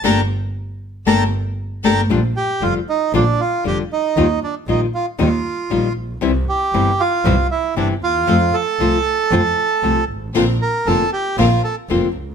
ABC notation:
X:1
M:4/4
L:1/8
Q:1/4=116
K:Gm
V:1 name="Bandoneon"
[gab] z3 [gab] z2 [gab] | [K:Bb] z G F E D F G E- | E D E F F3 z | z G2 F2 =E D F- |
F A6 z | z B A G F A z2 |]
V:2 name="String section"
[GAB] z3 [GAB] z2 [GAB] | [K:Bb] z8 | z8 | z8 |
z8 | [CDB] z [CDB] z [CDB] z [CDB] z |]
V:3 name="Nylon-string guitar"
[A,B,D] z3 [A,B,D] z2 [A,B,D] | [K:Bb] [D,G,DF] z [D,G,DF] z [D,G,DF] z [D,G,DF] z | [E,G,EF] z [E,G,EF] z [E,G,EF] z [E,G,EF] z | [C,=E,G,C=E] z [C,E,G,CE] z [C,E,G,CE] z [C,E,G,CE] z |
[C,F,A,CF] z [C,F,A,CF] z [C,F,A,CF] z [C,F,A,CF] z | [D,B,CF] z [D,B,CF] z [D,B,CF] z [D,B,CF] z |]
V:4 name="Double bass" clef=bass
G,,, z3 G,,, z2 G,,, | [K:Bb] B,,, z F,,, z B,,, z F,,, z | E,, z B,,, z E,, z B,,, B,,, | C,, z G,,, z C,, z G,,, E,, |
F,, z C,, z F,, z C,, _A,,, | B,,, z F,,, z B,,, z F,,, _D,, |]